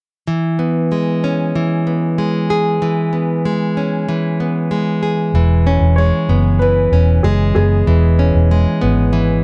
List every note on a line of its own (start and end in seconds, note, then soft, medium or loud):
0.27 1.55 E3 medium
0.59 1.86 B3 soft
0.92 2.18 G#3 medium
1.24 3.77 C#4 soft
1.55 2.82 E3 medium
1.87 3.12 B3 soft
2.18 3.45 G#3 medium
2.50 5.02 G#4 medium
2.82 4.08 E3 medium
3.13 4.40 B3 soft
3.45 4.71 G#3 medium
3.77 5.66 C#4 medium
4.09 5.34 E3 medium
4.40 5.70 B3 soft
4.71 5.98 G#3 medium
5.03 8.53 G#4 medium
5.34 5.78 E1 medium
5.34 6.61 E3 medium
5.67 6.92 C#4 medium
5.81 6.10 E1 medium
5.96 7.23 G#3 medium
5.96 6.62 C#5 medium
6.29 6.88 F#1 medium
6.29 7.55 B3 medium
6.59 7.87 E3 medium
6.59 7.19 B4 medium
6.92 7.21 E1 medium
6.92 8.19 C#4 medium
7.23 7.53 F#1 medium
7.23 8.50 G#3 medium
7.23 7.53 G#4 medium
7.55 7.85 F#1 medium
7.55 8.81 B3 soft
7.55 8.78 G#4 medium
7.87 8.31 E1 medium
7.87 9.12 E3 medium
8.19 9.44 C#4 medium
8.35 8.64 E1 medium
8.51 9.44 G#3 medium
8.81 9.42 G#1 medium
8.81 9.44 B3 medium
9.13 9.44 E3 medium